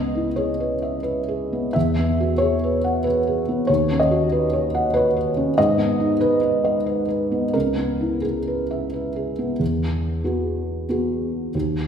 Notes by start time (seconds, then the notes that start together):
Already playing: C#2 B3 D#5
0.15 E4
0.36 G#4 C#5
0.60 B4
0.82 E5
1.03 B4
1.28 G#4
1.53 B3
1.73 E2 E5
1.99 B3
2.20 F#4
2.38 G#4 C#5
2.64 B4
2.84 F#5
3.04 B4
3.27 G#4
3.49 B3
3.67 D#2 C#5
3.91 C#4
4.00 D#5
4.11 F#4
4.32 B4
4.53 C#5
4.75 F#5
4.94 B4 C#5
5.17 B4
5.37 C#4
5.58 G#2 D#5
5.78 B3
6.00 D#4
6.21 B4
6.41 B4
6.65 D#5
6.86 B4
7.08 B4
7.32 B3
7.54 C#2 A#4
7.78 B3
8.01 E4
8.22 G#4
8.48 B4
8.71 E5
8.94 B4
9.16 G#4
9.39 B3
9.60 E2
10.24 B3 F#4 G#4
10.89 B3 F#4 G#4
11.55 D#2